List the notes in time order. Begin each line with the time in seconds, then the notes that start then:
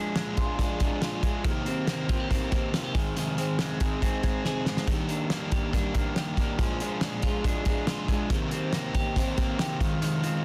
Already playing: F3 G#3 A#3 D4 G#4
0.16 A#2 F3 G#3 D4 G#4, snare, closed hi-hat
0.37 G#3 D4 F4 G#4, kick, closed hi-hat
0.58 F3 G#3 D4 G#4, kick, snare, closed hi-hat
0.79 G#3 D4 G#4, kick, closed hi-hat
1.01 A#2 F3 G#3 D4 F4 G#4, snare, closed hi-hat
1.23 G#3 D4 G#4, kick, closed hi-hat
1.44 C3 D#3 A#3 C4 G4, kick, closed hi-hat
1.65 A#3 C4 G4, closed hi-hat
1.87 C3 D#3 A#3 C4 G4, snare, closed hi-hat
2.08 A#3 C4 F4 G4, kick, closed hi-hat
2.20 G4
2.29 D#3 A#3 C4 G4, kick, snare, closed hi-hat
2.51 A#3 C4 G4, kick, closed hi-hat
2.72 C3 D#3 A#3 C4 F4 G4, snare, closed hi-hat
2.84 G4
2.94 D#3 G#3 C4 G#4, kick, closed hi-hat
3.16 F2 C3 D#3 G#3 C4 G#4, closed hi-hat
3.37 D#3 G#3 C4 G#4, closed hi-hat
3.59 F2 C3 D#3 G#3 C4 G#4, snare, closed hi-hat
3.79 D#3 G#3 C4 G#4, kick, closed hi-hat
4.00 D#3 G#3 C4 G#4, kick, closed hi-hat
4.23 D#3 G#3 C4 G#4, kick, closed hi-hat
4.44 F2 C3 D#3 G#3 C4 G#4, snare
4.65 D#3 G#3 C4 G#4, snare
4.77 snare
4.87 D#3 G3 A#3 D4 G4, kick, closed hi-hat
5.09 A#3 D4 G4, closed hi-hat
5.30 D#3 G3 A#3 D4 G4, snare, closed hi-hat
5.51 A#3 D4 G4, kick, closed hi-hat
5.73 G3 A#3 D4 G4, kick, snare, closed hi-hat
5.94 A#3 D4 G4, kick, closed hi-hat
6.15 D#3 G3 A#3 D4 G4, snare, closed hi-hat
6.37 A#3 D4 G4, kick, closed hi-hat
6.58 A#2 F3 G#3 D4 G#4, kick, closed hi-hat
6.80 G#3 D4 G#4, closed hi-hat
7.01 A#2 F3 G#3 D4 G#4, snare, closed hi-hat
7.22 G#3 D4 F4 G#4, kick, closed hi-hat
7.44 F3 G#3 D4 G#4, kick, closed hi-hat
7.65 G#3 D4 G#4, kick, closed hi-hat
7.87 A#2 F3 G#3 D4 F4 G#4, snare, closed hi-hat
8.08 G#3 D4 G#4, kick, closed hi-hat
8.30 C3 D#3 A#3 C4 G4, kick, closed hi-hat
8.51 A#3 C4 G4, closed hi-hat
8.72 C3 D#3 A#3 C4 G4, snare, closed hi-hat
8.94 A#3 C4 G4, kick, closed hi-hat
9.16 D#3 A#3 C4 G4, kick, snare, closed hi-hat
9.37 A#3 C4 G4, kick, closed hi-hat
9.59 C3 D#3 A#3 C4 G4, snare, closed hi-hat
9.80 D#3 G#3 C4 F4, kick, closed hi-hat
10.01 F2 C3 D#3 G#3 C4 F4, closed hi-hat
10.22 D#3 G#3 C4 F4, closed hi-hat